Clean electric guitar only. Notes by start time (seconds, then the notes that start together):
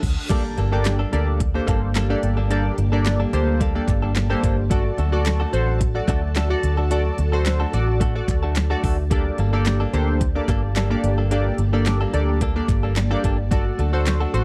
0.29 G3 A#3 D4 A4
0.44 muted clean electric guitar stroke
0.57 G3 A#3 D4 A4
0.72 G3 A#3 D4 A4
0.85 muted clean electric guitar stroke
0.99 G3 A#3 D4 A4
1.12 muted clean electric guitar stroke
1.27 muted clean electric guitar stroke
1.40 muted clean electric guitar stroke
1.54 muted clean electric guitar stroke
1.67 G3 A#3 D4 A4
1.82 muted clean electric guitar stroke
1.95 G3 A#3 D4 A4
2.10 muted clean electric guitar stroke
2.22 muted clean electric guitar stroke
2.37 G3 A#3 D4 A4
2.50 G3 A#3 D4 A4
2.65 muted clean electric guitar stroke
2.78 muted clean electric guitar stroke
2.92 G3 A#3 D4 A4
3.05 muted clean electric guitar stroke
3.20 G3 A#3 D4 A4
3.48 muted clean electric guitar stroke
3.60 G3 A#3 D4 A4
3.75 muted clean electric guitar stroke
3.88 muted clean electric guitar stroke
4.02 G3 A#3 D4 A4
4.15 muted clean electric guitar stroke
4.30 G3 A#3 D4 A4
4.42 G3 A#3 D4 A4
4.57 muted clean electric guitar stroke
4.70 A3 D4 F#4 A4
4.85 muted clean electric guitar stroke
4.98 A3 D4 F#4 A4
5.12 A3 D4 F#4 A4
5.25 muted clean electric guitar stroke
5.40 A3 D4 F#4 A4
5.53 muted clean electric guitar stroke
5.67 muted clean electric guitar stroke
5.80 muted clean electric guitar stroke
5.95 muted clean electric guitar stroke
6.08 A3 D4 F#4 A4
6.23 muted clean electric guitar stroke
6.35 A3 D4 F#4 A4
6.50 muted clean electric guitar stroke
6.63 muted clean electric guitar stroke
6.77 A3 D4 F#4 A4
6.90 A3 D4 F#4 A4
7.05 muted clean electric guitar stroke
7.18 muted clean electric guitar stroke
7.32 A3 D4 F#4 A4
7.45 muted clean electric guitar stroke
7.60 A3 D4 F#4 A4
7.73 muted clean electric guitar stroke
7.88 muted clean electric guitar stroke
8.00 A3 D4 F#4 A4
8.15 muted clean electric guitar stroke
8.28 muted clean electric guitar stroke
8.43 A3 D4 F#4 A4
8.56 muted clean electric guitar stroke
8.70 A3 D4 F#4 A4
8.83 A3 D4 F#4 A4
8.98 muted clean electric guitar stroke
9.10 G3 A#3 D4 A4
9.25 muted clean electric guitar stroke
9.38 G3 A#3 D4 A4
9.53 G3 A#3 D4 A4
9.66 muted clean electric guitar stroke
9.80 G3 A#3 D4 A4
9.93 muted clean electric guitar stroke
10.08 muted clean electric guitar stroke
10.21 muted clean electric guitar stroke
10.35 muted clean electric guitar stroke
10.48 G3 A#3 D4 A4
10.63 muted clean electric guitar stroke
10.76 G3 A#3 D4 A4
10.90 muted clean electric guitar stroke
11.03 muted clean electric guitar stroke
11.18 G3 A#3 D4 A4
11.31 G3 A#3 D4 A4
11.46 muted clean electric guitar stroke
11.59 muted clean electric guitar stroke
11.73 G3 A#3 D4 A4
11.86 muted clean electric guitar stroke
12.01 G3 A#3 D4 A4
12.14 muted clean electric guitar stroke
12.29 muted clean electric guitar stroke
12.41 G3 A#3 D4 A4
12.56 muted clean electric guitar stroke
12.69 muted clean electric guitar stroke
12.83 G3 A#3 D4 A4
12.96 muted clean electric guitar stroke
13.11 G3 A#3 D4 A4
13.23 G3 A#3 D4 A4
13.38 muted clean electric guitar stroke
13.51 A3 D4 F#4 A4
13.66 muted clean electric guitar stroke
13.78 A3 D4 F#4 A4
13.93 A3 D4 F#4 A4
14.06 muted clean electric guitar stroke
14.21 A3 D4 F#4 A4
14.34 muted clean electric guitar stroke